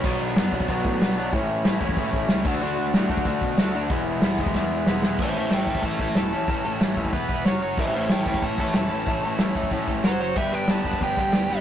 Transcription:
<<
  \new Staff \with { instrumentName = "Lead electric guitar" } { \time 4/4 \key e \mixolydian \tempo 4 = 186 r1 | r1 | r1 | r1 |
\key a \mixolydian <c'' e''>8 <c'' e''>8 <e'' g''>8 <e'' g''>8 <e'' a''>8 <e'' a''>8 a''4~ | a''4 r2. | <c'' e''>8 <c'' e''>8 <e'' g''>8 <e'' g''>8 <e'' a''>8 <e'' a''>8 a''4~ | a''4 r2 c''4 |
e''8 g''8 a''4 g''2 | }
  \new Staff \with { instrumentName = "Distorted electric guitar" } { \time 4/4 \key e \mixolydian <b, fis b d'>4 <b, fis b d'>8 <b, fis b d'>8 <b, fis b d'>4 <b, fis b d'>8 <b, fis b d'>8 | <a, e a cis' e'>4 <a, e a cis' e'>8 <a, e a cis' e'>8 <a, e a cis' e'>4 <a, e a cis' e'>8 <d a d' fis'>8 | <d a d' fis'>4 <d a d' fis'>8 <d a d' fis'>8 <d a d' fis'>4 <d a d' fis'>8 <d a d' fis'>8 | <e gis b e'>4 <e gis b e'>8 <e gis b e'>8 <e gis b e'>4 <e gis b e'>8 <e gis b e'>8 |
\key a \mixolydian <a, e a cis' e' a'>8 <a, e a cis' e' a'>8 <a, e a cis' e' a'>8 <a, e a cis' e' a'>8 <a, e a cis' e' a'>8 <a, e a cis' e' a'>8 <a, e a cis' e' a'>8 <a, e a cis' e' a'>8 | <a, e a cis' e' a'>8 <a, e a cis' e' a'>8 <a, e a cis' e' a'>8 <a, e a cis' e' a'>8 <e b e' b'>8 <e b e' b'>8 <fis cis' fis' cis''>8 <fis cis' fis' cis''>8 | <a, e a cis' e' a'>8 <a, e a cis' e' a'>8 <a, e a cis' e' a'>8 <a, e a cis' e' a'>8 <a, e a cis' e' a'>8 <a, e a cis' e' a'>8 <a, e a cis' e' a'>8 <a, e a cis' e' a'>8 | <a, e a cis' e' a'>8 <a, e a cis' e' a'>8 <a, e a cis' e' a'>8 <a, e a cis' e' a'>8 <a, e a cis' e' a'>8 <a, e a cis' e' a'>8 <fis cis' fis' cis''>8 <fis cis' fis' cis''>8 |
<g b d' g' b'>8 <g b d' g' b'>8 <g b d' g' b'>8 <g b d' g' b'>8 <g b d' g' b'>8 <g b d' g' b'>8 <g b d' g' b'>8 <g b d' g' b'>8 | }
  \new Staff \with { instrumentName = "Picked electric bass" } { \clef bass \time 4/4 \key e \mixolydian b,,8 b,,8 fis,8 b,,8 b,,8 a,8 b,,4 | a,,8 a,,8 a,,8 a,,8 a,4 cis,8 d,8 | d,8 d,8 a,8 d,8 d,8 b,8 d,4 | e,,8 e,,8 e,,8 e,,8 e,4 e,,8 e,,8 |
\key a \mixolydian a,,8 a,,8 a,,4 a,,8 a,,8 e,,8 a,,8 | a,,8 a,,8 a,,8 dis,8 e,,8 e,,8 fis,,8 fis,,8 | a,,8 a,,8 a,,4 a,,8 a,,8 e,,8 a,,8 | a,,8 a,,8 a,,8 a,,8 a,8 a,,8 fis,,8 fis,,8 |
g,,8 g,,8 g,,4 g,,8 g,,8 d,8 g,,8 | }
  \new DrumStaff \with { instrumentName = "Drums" } \drummode { \time 4/4 <cymc bd>4 <cymc sn>8 bd16 bd16 <cymc bd>8 bd8 <cymc sn>4 | <cymc bd>4 <cymc sn>8 bd16 bd16 <cymc bd>8 bd8 <cymc sn>8 <cymc bd>8 | cymc4 <cymc sn>8 bd16 bd16 <cymc bd>8 bd8 <cymc sn>4 | <cymc bd>4 <cymc sn>8 bd16 bd16 <bd sn>4 sn8 sn8 |
<cymc bd>8 hho8 <hho sn>8 <hho bd>16 bd16 <hho bd>8 <hho bd>8 <hho sn>8 hho8 | <hho bd>8 hho8 <hho sn>8 <hho bd>16 bd16 <hho bd>8 <hho bd>8 <hho sn>8 hho8 | <hho bd>8 hho8 <hho sn>8 <hho bd>16 bd16 <hho bd>8 <hho bd>8 <hho sn>8 hho8 | <hho bd>8 hho8 <hho sn>8 <hho bd>16 bd16 <hho bd>8 <hho bd>8 <hho sn>8 hho8 |
<cymc bd>8 hho8 <hho sn>8 <hho bd>16 bd16 <hho bd>8 <hho bd>8 <hho sn>8 hho8 | }
>>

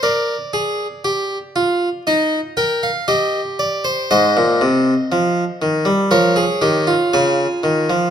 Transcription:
<<
  \new Staff \with { instrumentName = "Harpsichord" } { \time 4/4 \key aes \major \tempo 4 = 59 << { d''2 ees''8 g''16 f''16 ees''8 d''16 c''16 | ees''2 des''4 aes''4 | } \\ { bes'8 aes'8 g'8 f'8 ees'8 bes'8 g'4 | c''2 bes'16 aes'16 g'16 f'4~ f'16 | } >> }
  \new Staff \with { instrumentName = "Harpsichord" } { \clef bass \time 4/4 \key aes \major r1 | aes,16 bes,16 c8 f8 ees16 g16 f8 ees8 des8 ees16 f16 | }
>>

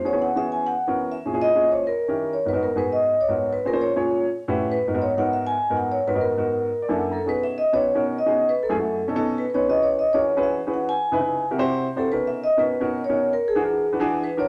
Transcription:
<<
  \new Staff \with { instrumentName = "Vibraphone" } { \time 4/4 \key b \major \tempo 4 = 199 cis''8 fis''8 e''8 gis''8 fis''4 r8 e''8~ | e''8 dis''8.~ dis''32 bis'32 cis''8 ais'4. cis''8 | b'8 ais'8 b'8 dis''4 cis''4 b'8 | ais'8 cis''4. r4. b'8~ |
b'8 cis''8 fis''8 e''8 gis''4 fis''8 cis''8 | b'8 ais'2. a'8 | b'8 e''8 dis''8 cis''4 r8 dis''4 | b'8 a'4. r4 b'16. b'32 cis''8 |
dis''8 cis''8 dis''8 cis''4 e''4 fis''8 | gis''2 r4. a'8 | b'8 e''8 dis''8 b'4 r8 cis''4 | ais'8 gis'4. r4 b'8 cis''8 | }
  \new Staff \with { instrumentName = "Grand piano" } { \time 4/4 \key b \major << { r1 | r1 | r1 | r1 |
r1 | r2 r8 d''8 fis''8 ais''8 | r1 | r1 |
r1 | r1 | r1 | r1 | } \\ { <e b cis' fis' gis'>16 <e b cis' fis' gis'>8 r16 <e b cis' fis' gis'>4~ <e b cis' fis' gis'>16 r8 <e b cis' fis' ais'>8. r8 | <ais, cis' e' gis'>16 <ais, cis' e' gis'>8 r16 <ais, cis' e' gis'>4 r8. <dis cis' e' g' ais'>8. r8 | <gis, b dis' fis' ais'>16 <gis, b dis' fis' ais'>8 r16 <gis, b dis' fis' gis'>4~ <gis, b dis' fis' gis'>16 r8 <gis, b dis' fis' ais'>8. r8 | <ais, cis' eis' gis' bis'>16 <ais, cis' eis' gis' bis'>8 r16 <ais, cis' eis' gis' cis''>4 r8. <a, cis' e' fis' g' b'>8. r8 |
<gis, b dis' fis' ais'>16 <gis, b dis' fis' ais'>8 r16 <gis, b dis' fis' ais'>4~ <gis, b dis' fis' ais'>16 r8 <gis, b dis' fis' ais'>8. r8 | <gis, b dis' fis' ais'>16 <gis, b dis' fis' ais'>8 r16 <gis, b dis' fis' ais'>4 r8. <fis, ais d' e' a'>8. r8 | <b, cis' dis' fis' gis'>4 r8 <b, cis' dis' fis' b'>8 r16 <b, cis' dis' fis' ais'>8. r16 <b, cis' dis' fis' gis'>8. | r8. <fis, a e' gis'>16 <fis, a e' fis'>8. r16 <b, cis' dis' a'>16 <b, cis' dis' a'>8. r8 <b, cis' dis' b'>16 r16 |
<e cis' fis' gis' b'>4 r8 <e cis' fis' gis' ais'>8 r16 <e cis' fis' gis' b'>8. r16 <e cis' fis' gis' b'>8. | r8. <cis dis' e' b'>16 <cis dis' e' b'>8. r16 <c e' fis' g' bes'>16 <c e' fis' g' c''>8. r8 <c e' fis' g' c''>16 r16 | <b, cis' dis' fis' ais'>4 r8 <b, cis' dis' fis' ais'>8 r16 <b, cis' dis' fis' ais'>8. r16 <b, cis' dis' fis' ais'>8. | r8. <e d' fis' gis'>16 <e d' fis' ais'>8. r16 <e d' fis' b'>16 <e d' fis' gis'>8. r8 <e d' fis' ais'>16 r16 | } >> }
>>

